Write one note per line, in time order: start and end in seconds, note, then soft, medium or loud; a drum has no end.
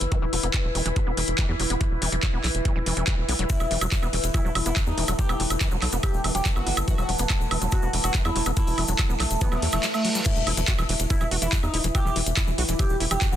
0.00 0.08 G1 medium
0.00 10.25 E3 medium
0.00 3.52 E4 medium
0.00 10.25 E4 medium
0.00 10.26 B4 medium
0.00 13.36 E5 medium
0.00 closed hi-hat medium
0.12 0.19 E3 medium
0.12 kick loud
0.12 closed hi-hat medium
0.22 0.29 E1 medium
0.22 0.25 E3 loud
0.33 0.39 E1 loud
0.33 0.36 F#3 medium
0.33 open hi-hat loud
0.43 0.50 E1 loud
0.43 0.48 B3 medium
0.43 closed hi-hat medium
0.54 0.57 E3 medium
0.54 kick loud
0.54 clap loud
0.54 closed hi-hat medium
0.64 0.71 E1 medium
0.75 0.81 E1 loud
0.75 0.83 E3 medium
0.75 open hi-hat loud
0.86 0.92 E1 medium
0.86 0.89 E3 loud
0.86 closed hi-hat medium
0.96 0.99 F#3 medium
0.96 kick loud
0.96 closed hi-hat medium
1.07 1.13 E1 medium
1.07 1.12 B3 medium
1.17 1.24 E1 loud
1.17 1.20 E3 medium
1.17 open hi-hat loud
1.28 1.34 E1 medium
1.28 closed hi-hat medium
1.38 1.46 E3 medium
1.38 kick loud
1.38 clap loud
1.38 closed hi-hat medium
1.49 1.55 E2 medium
1.49 1.52 E3 loud
1.60 1.66 E1 medium
1.60 1.63 F#3 medium
1.60 open hi-hat loud
1.70 1.77 E1 medium
1.70 1.75 B3 medium
1.70 closed hi-hat medium
1.81 1.84 E3 medium
1.81 kick loud
1.81 closed hi-hat medium
1.91 1.98 E1 medium
2.02 2.08 E1 loud
2.02 2.09 E3 medium
2.02 open hi-hat loud
2.12 2.19 E1 medium
2.12 2.15 E3 loud
2.12 closed hi-hat medium
2.23 2.26 F#3 medium
2.23 kick loud
2.23 clap loud
2.23 closed hi-hat medium
2.33 2.40 E1 medium
2.33 2.39 B3 medium
2.44 2.50 B1 loud
2.44 2.47 E3 medium
2.44 clap soft
2.44 open hi-hat loud
2.55 2.61 E1 medium
2.55 closed hi-hat medium
2.65 2.73 E3 medium
2.65 kick loud
2.65 closed hi-hat medium
2.76 2.82 E1 medium
2.76 2.79 E3 loud
2.86 2.93 E1 loud
2.86 2.94 E3 medium
2.86 open hi-hat loud
2.97 3.03 E1 medium
2.97 3.05 E3 medium
2.97 closed hi-hat medium
3.07 3.15 E3 medium
3.07 kick loud
3.07 clap loud
3.07 closed hi-hat medium
3.18 3.24 E1 medium
3.29 3.35 B1 loud
3.29 3.34 B3 medium
3.29 open hi-hat loud
3.39 3.46 E1 loud
3.39 3.44 F#3 loud
3.39 closed hi-hat medium
3.50 3.53 E3 medium
3.50 10.28 A3 medium
3.50 3.72 E4 loud
3.50 kick loud
3.50 closed hi-hat medium
3.50 shaker medium
3.60 3.67 E1 medium
3.60 high woodblock soft
3.60 shaker soft
3.71 3.77 E1 loud
3.71 3.78 E3 medium
3.71 open hi-hat loud
3.81 3.88 E1 loud
3.81 3.86 F#3 medium
3.81 closed hi-hat medium
3.81 high woodblock medium
3.81 shaker medium
3.92 3.95 F#3 medium
3.92 kick loud
3.92 clap loud
3.92 closed hi-hat medium
3.92 shaker medium
4.02 4.09 E1 medium
4.02 4.08 B3 medium
4.02 high woodblock soft
4.02 shaker soft
4.13 4.20 E1 loud
4.13 4.16 E3 medium
4.13 open hi-hat loud
4.24 4.30 E1 medium
4.24 closed hi-hat medium
4.24 shaker medium
4.34 4.42 E3 medium
4.34 4.51 E4 loud
4.34 kick loud
4.34 closed hi-hat medium
4.34 high woodblock soft
4.34 shaker medium
4.45 4.51 E1 medium
4.45 4.50 F#3 medium
4.45 shaker soft
4.55 4.62 E1 loud
4.55 4.58 F#3 medium
4.55 open hi-hat loud
4.55 high woodblock medium
4.66 4.72 E1 medium
4.66 4.71 B3 medium
4.66 4.77 E4 medium
4.66 closed hi-hat medium
4.66 shaker medium
4.76 4.80 E3 medium
4.76 kick loud
4.76 clap loud
4.76 closed hi-hat medium
4.76 high woodblock soft
4.76 shaker medium
4.87 4.93 E2 medium
4.87 5.04 D#4 loud
4.87 shaker soft
4.98 5.04 E1 loud
4.98 5.05 E3 medium
4.98 open hi-hat loud
5.08 5.15 E1 medium
5.08 5.13 F#3 medium
5.08 closed hi-hat medium
5.08 high woodblock soft
5.08 shaker medium
5.19 5.22 F#3 medium
5.19 5.41 G4 loud
5.19 kick loud
5.19 closed hi-hat medium
5.19 shaker medium
5.29 5.36 E1 medium
5.29 5.34 B3 medium
5.29 high woodblock medium
5.29 shaker soft
5.40 5.46 E1 loud
5.40 5.43 E3 medium
5.40 open hi-hat loud
5.50 5.57 E1 loud
5.50 closed hi-hat medium
5.50 high woodblock soft
5.50 shaker medium
5.61 5.69 E3 medium
5.61 kick loud
5.61 clap loud
5.61 closed hi-hat medium
5.61 shaker medium
5.71 5.78 E1 medium
5.71 5.77 F#3 medium
5.71 shaker soft
5.82 5.89 B1 loud
5.82 5.85 F#3 medium
5.82 clap soft
5.82 open hi-hat loud
5.82 high woodblock soft
5.92 5.99 E1 medium
5.92 5.98 B3 medium
5.92 closed hi-hat medium
5.92 shaker medium
6.03 6.06 E3 medium
6.03 6.20 G4 loud
6.03 kick loud
6.03 closed hi-hat medium
6.03 high woodblock medium
6.03 shaker medium
6.14 6.20 E1 medium
6.14 shaker soft
6.24 6.31 E1 loud
6.24 6.32 E3 medium
6.24 open hi-hat loud
6.24 high woodblock soft
6.35 6.41 E1 medium
6.35 6.40 F#3 medium
6.35 6.46 G4 medium
6.35 closed hi-hat medium
6.35 shaker medium
6.45 6.48 F#3 medium
6.45 kick loud
6.45 clap loud
6.45 closed hi-hat medium
6.45 shaker medium
6.56 6.62 G1 medium
6.56 6.61 B3 medium
6.56 6.73 F#4 medium
6.56 high woodblock soft
6.56 shaker soft
6.67 6.73 G1 loud
6.67 6.70 E3 medium
6.67 open hi-hat loud
6.77 6.84 G1 medium
6.77 closed hi-hat medium
6.77 high woodblock medium
6.77 shaker medium
6.88 6.95 E3 medium
6.88 7.10 F#4 loud
6.88 kick loud
6.88 closed hi-hat medium
6.88 shaker medium
6.98 7.05 E1 medium
6.98 7.03 F#3 medium
6.98 high woodblock soft
6.98 shaker soft
7.09 7.15 E1 loud
7.09 7.12 F#3 medium
7.09 open hi-hat loud
7.19 7.26 E1 medium
7.19 7.25 B3 medium
7.19 closed hi-hat medium
7.19 shaker medium
7.30 7.33 E3 medium
7.30 kick loud
7.30 clap loud
7.30 closed hi-hat medium
7.30 high woodblock soft
7.30 shaker medium
7.40 7.47 E1 medium
7.40 shaker soft
7.51 7.58 E1 loud
7.51 7.59 E3 medium
7.51 open hi-hat loud
7.51 high woodblock medium
7.62 7.68 E1 medium
7.62 7.67 F#3 medium
7.62 closed hi-hat medium
7.62 shaker medium
7.71 7.75 F#3 medium
7.71 7.89 F#4 loud
7.71 kick loud
7.71 closed hi-hat medium
7.71 high woodblock soft
7.71 shaker medium
7.82 7.89 E1 medium
7.82 7.88 B3 medium
7.82 shaker soft
7.93 8.00 E1 loud
7.93 7.96 E3 medium
7.93 open hi-hat loud
8.04 8.10 E1 medium
8.04 8.15 F#4 medium
8.04 closed hi-hat medium
8.04 high woodblock soft
8.04 shaker medium
8.14 8.22 E3 medium
8.14 kick loud
8.14 clap loud
8.14 closed hi-hat medium
8.14 shaker medium
8.25 8.31 E2 medium
8.25 8.30 F#3 medium
8.25 8.42 E4 medium
8.25 high woodblock medium
8.25 shaker soft
8.36 8.42 E1 medium
8.36 8.39 F#3 medium
8.36 open hi-hat loud
8.46 8.53 E1 loud
8.46 8.51 B3 medium
8.46 closed hi-hat medium
8.46 high woodblock soft
8.46 shaker medium
8.57 8.60 E3 medium
8.57 8.79 E4 loud
8.57 kick loud
8.57 closed hi-hat medium
8.57 shaker medium
8.67 8.74 E1 medium
8.67 open hi-hat medium
8.67 shaker soft
8.78 8.84 E1 loud
8.78 8.86 E3 medium
8.78 open hi-hat loud
8.78 high woodblock soft
8.88 8.95 E1 loud
8.88 8.94 F#3 medium
8.88 closed hi-hat medium
8.88 shaker medium
8.99 9.02 F#3 medium
8.99 kick loud
8.99 clap loud
8.99 closed hi-hat medium
8.99 high woodblock medium
8.99 shaker medium
9.10 9.16 E1 medium
9.10 9.15 B3 medium
9.10 shaker soft
9.20 9.27 B1 loud
9.20 9.23 E3 medium
9.20 clap soft
9.20 open hi-hat loud
9.20 high woodblock soft
9.31 9.37 E1 medium
9.31 closed hi-hat medium
9.31 shaker medium
9.41 9.49 E3 medium
9.41 9.58 B3 loud
9.41 kick loud
9.41 closed hi-hat medium
9.41 reverse cymbal medium
9.41 shaker medium
9.52 9.58 E1 medium
9.52 9.57 F#3 medium
9.52 high woodblock soft
9.52 shaker soft
9.62 9.69 E2 loud
9.62 9.67 E3 medium
9.62 open hi-hat loud
9.72 9.79 E1 medium
9.72 9.78 E3 medium
9.72 9.84 A3 medium
9.72 closed hi-hat medium
9.72 high woodblock medium
9.72 shaker medium
9.83 9.87 F#3 medium
9.83 clap loud
9.83 closed hi-hat medium
9.83 shaker medium
9.94 10.11 A3 medium
9.94 high woodblock soft
9.94 shaker soft
10.05 10.10 F#3 loud
10.05 open hi-hat loud
10.15 10.20 G3 loud
10.15 closed hi-hat medium
10.15 shaker medium
10.24 10.31 E3 medium
10.24 13.36 E3 medium
10.24 10.48 E4 loud
10.24 13.36 E4 medium
10.24 kick loud
10.24 closed hi-hat medium
10.24 crash loud
10.24 sub drop medium
10.24 shaker medium
10.36 10.43 E1 medium
10.36 13.36 B4 loud
10.36 shaker soft
10.47 10.53 E1 loud
10.47 10.52 E4 medium
10.47 open hi-hat loud
10.47 high woodblock soft
10.57 10.64 E1 medium
10.57 10.60 E3 loud
10.57 closed hi-hat medium
10.57 shaker medium
10.68 10.73 F#4 medium
10.68 kick loud
10.68 clap loud
10.68 closed hi-hat medium
10.68 shaker medium
10.78 10.85 E1 medium
10.78 10.84 E3 loud
10.78 high woodblock medium
10.78 shaker soft
10.89 10.96 E1 loud
10.89 10.94 E3 medium
10.89 open hi-hat loud
11.00 11.06 E1 medium
11.00 closed hi-hat medium
11.00 shaker medium
11.10 11.15 E4 medium
11.10 11.27 E4 loud
11.10 kick loud
11.10 closed hi-hat medium
11.10 shaker medium
11.21 11.27 E1 medium
11.21 11.24 E3 loud
11.21 high woodblock soft
11.21 shaker soft
11.31 11.38 E1 loud
11.31 11.37 F#4 medium
11.31 open hi-hat loud
11.42 11.48 E1 medium
11.42 11.47 E3 loud
11.42 11.53 E4 medium
11.42 closed hi-hat medium
11.42 shaker medium
11.53 11.58 E3 medium
11.53 kick loud
11.53 clap loud
11.53 closed hi-hat medium
11.53 shaker medium
11.63 11.70 E2 medium
11.63 11.80 D#4 medium
11.63 high woodblock soft
11.63 shaker soft
11.74 11.80 E1 loud
11.74 11.79 E4 medium
11.74 open hi-hat loud
11.84 11.91 E1 loud
11.84 11.87 E3 loud
11.84 closed hi-hat medium
11.84 shaker medium
11.95 12.00 F#4 medium
11.95 12.17 G4 loud
11.95 kick loud
11.95 closed hi-hat medium
11.95 high woodblock medium
11.95 shaker medium
12.05 12.12 E1 medium
12.05 12.10 E3 loud
12.05 shaker soft
12.16 12.22 E1 loud
12.16 12.21 E3 medium
12.16 open hi-hat loud
12.26 12.33 E1 loud
12.26 closed hi-hat medium
12.26 shaker medium
12.37 12.42 E4 medium
12.37 kick loud
12.37 clap loud
12.37 closed hi-hat medium
12.37 high woodblock soft
12.37 shaker medium
12.47 12.54 E1 medium
12.47 12.51 E3 loud
12.47 shaker soft
12.58 12.65 B1 loud
12.58 12.63 F#4 medium
12.58 open hi-hat loud
12.68 12.75 E1 medium
12.68 12.74 E3 loud
12.68 closed hi-hat medium
12.68 shaker medium
12.79 12.84 E3 medium
12.79 12.96 G4 loud
12.79 kick loud
12.79 closed hi-hat medium
12.79 high woodblock soft
12.79 shaker medium
12.89 12.96 E1 medium
12.89 shaker soft
13.00 13.07 E1 loud
13.00 13.06 E4 medium
13.00 open hi-hat loud
13.11 13.17 E1 medium
13.11 13.14 E3 loud
13.11 13.22 G4 medium
13.11 closed hi-hat medium
13.11 high woodblock medium
13.11 shaker medium
13.22 13.27 F#4 medium
13.22 kick loud
13.22 clap loud
13.22 closed hi-hat medium
13.22 shaker medium
13.32 13.36 E1 medium
13.32 13.36 E3 loud
13.32 13.36 F#4 medium
13.32 shaker soft